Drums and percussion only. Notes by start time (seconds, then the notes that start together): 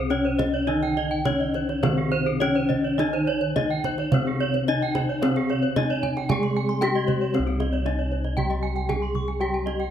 0.11 kendang slap
0.39 kendang slap, kendang high, kendang low
0.83 kendang slap
0.97 kendang slap
1.25 kendang high, kendang low
1.54 kendang slap
1.69 kendang slap
1.83 kendang high, kendang low
2.41 kendang slap, kendang high
2.70 kendang slap, kendang low
2.99 kendang high
3.14 kendang slap
3.28 kendang slap
3.56 kendang high, kendang low
3.84 kendang slap, kendang low
3.98 kendang slap
4.12 kendang low
4.54 kendang slap
4.68 kendang slap
4.95 kendang slap, kendang high, kendang low
5.23 kendang high
5.36 kendang slap
5.50 kendang slap
5.76 kendang slap, kendang high, kendang low
6.03 kendang low
6.17 kendang slap
6.30 kendang high, kendang low
6.43 kendang slap
6.69 kendang slap
6.82 kendang slap, kendang high
7.08 kendang slap, kendang low
7.34 kendang high
7.47 kendang slap
7.60 kendang high
7.73 kendang slap
7.86 kendang high
8.24 kendang slap
8.37 kendang low
8.51 kendang slap
8.76 kendang slap
8.89 kendang high, kendang low
9.15 kendang low
9.28 kendang slap
9.54 kendang slap
9.67 kendang high
9.80 kendang slap